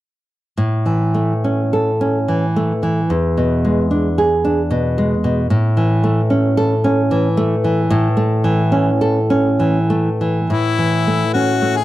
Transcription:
0.57 A2
0.86 E3
1.14 A3
1.44 C#4
1.73 A4
2.01 C#4
2.28 E3
2.56 A3
2.83 E3
3.10 E2
3.37 B2
3.65 G#3
3.91 D4
4.18 G#4
4.45 D4
4.71 B2
4.98 G#3
5.24 B2
5.50 A2
5.77 E3
6.04 A3
6.30 C#4
6.57 A4
6.84 C#4
7.11 E3
7.37 A3
7.64 E3
7.90 A2
8.17 A3
8.44 E3
8.72 C#4
9.01 A4
9.30 C#4
9.60 E3
9.90 A3
10.21 E3
10.50 A2 E4
10.79 E3
11.07 A3
11.33 C#4 F#4
11.62 A3
11.77 G#4

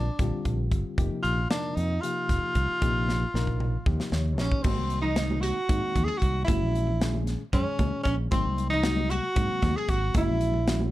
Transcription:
Already playing: D4
0.19 A#1 D3 G3 C4 F4 G4, kick, closed hi-hat
0.45 A#1, kick, closed hi-hat
0.72 G1, kick, closed hi-hat
0.98 F1 C3 F3 A#3 D#4 G4, kick, closed hi-hat
1.23 A#1 F4, closed hi-hat
1.50 C3 F3 A#3 D4 D#4 A#4, snare, closed hi-hat
1.76 F2 D#4, closed hi-hat
2.01 C3 F3 A#3 D#4 F4 G4, closed hi-hat
2.29 F1, kick, snare, closed hi-hat
2.42 muted fingered electric bass stroke
2.55 C2, kick, closed hi-hat
2.81 A#1 C3 F3 A#3 D#4 G4, kick, closed hi-hat
3.09 snare
3.34 A#1 C3 F3 A#3 D#4 A#4, snare
3.47 kick
3.60 mid tom
3.86 D#2 C3 F3 A#3 D#4 G4, kick
4.00 snare
4.12 D#2 C#5, snare
4.38 A#1 C#4, snare
4.52 kick
4.63 G#1 D#3 G#3 A#3 C4 F#4, kick, crash, high conga, low conga
4.78 C2
4.90 closed hi-hat
5.02 D#4, low conga
5.16 D#3 G#3 A#3 C4 D#4, snare, closed hi-hat
5.30 high conga
5.41 F#4, snare, closed hi-hat
5.69 G#2 D#3 G#3 A#3 C4 D#4, kick, closed hi-hat
5.96 D#2, kick, closed hi-hat, low conga
6.04 G#4
6.17 F#4
6.22 C2, kick, closed hi-hat
6.45 F#1 A#2 E3 G#3 C#4 E4 F#4, kick, closed hi-hat, high conga, low conga
6.62 A#1
6.75 closed hi-hat, low conga
6.87 low conga
7.00 A#2 D#3 G#3 C#4 G#4, snare, closed hi-hat
7.14 high conga
7.27 snare, closed hi-hat
7.53 F#2 A#2 D#3 G#3 C#4 G#4, kick, closed hi-hat
7.79 C#2, kick, closed hi-hat, high conga, low conga
8.03 A#1 C#4, kick, closed hi-hat
8.31 G#1 C3 F#3 G#3 A#3 C4 D#4, kick, closed hi-hat, high conga, low conga
8.46 C2
8.57 closed hi-hat, low conga
8.70 D#4, low conga
8.83 C3 F#3 G#3 A#3 F#4, snare, closed hi-hat
8.96 high conga
9.10 F#4, closed hi-hat
9.36 G#2 C3 F#3 G#3 A#3 C4, kick, closed hi-hat
9.62 D#2, kick, snare, closed hi-hat, high conga, low conga
9.76 G#4
9.89 G#1 F#4, kick, closed hi-hat
9.93 F#4
10.14 F#1 A#2 E3 G#3 C#4 E4 F#4, kick, closed hi-hat, high conga
10.28 A#1
10.41 closed hi-hat
10.54 low conga
10.68 A#2 D#3 G#3 C#4 F#4, snare, closed hi-hat
10.80 high conga, low conga

